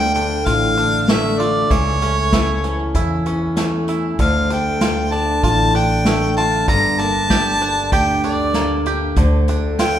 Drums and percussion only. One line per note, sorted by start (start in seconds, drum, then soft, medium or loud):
0.16 closed hi-hat soft
0.46 kick medium
0.46 closed hi-hat medium
0.78 closed hi-hat soft
1.08 snare medium
1.08 closed hi-hat medium
1.39 closed hi-hat soft
1.71 kick medium
1.71 closed hi-hat medium
2.01 closed hi-hat soft
2.32 kick medium
2.32 snare medium
2.32 closed hi-hat medium
2.64 closed hi-hat soft
2.94 kick medium
2.94 closed hi-hat medium
3.26 closed hi-hat soft
3.56 snare medium
3.56 closed hi-hat medium
3.88 closed hi-hat soft
4.19 kick medium
4.19 closed hi-hat medium
4.50 closed hi-hat soft
4.81 snare medium
4.81 closed hi-hat medium
5.12 closed hi-hat soft
5.43 kick medium
5.43 closed hi-hat medium
5.74 closed hi-hat soft
6.05 snare medium
6.05 closed hi-hat medium
6.36 closed hi-hat soft
6.68 kick medium
6.68 closed hi-hat medium
6.99 closed hi-hat soft
7.30 kick medium
7.30 snare medium
7.30 closed hi-hat medium
7.61 closed hi-hat soft
7.92 kick medium
7.92 closed hi-hat medium
8.23 closed hi-hat soft
8.54 snare medium
8.54 closed hi-hat medium
8.85 closed hi-hat soft
9.16 kick medium
9.16 closed hi-hat medium
9.48 closed hi-hat soft
9.79 snare medium
9.79 closed hi-hat medium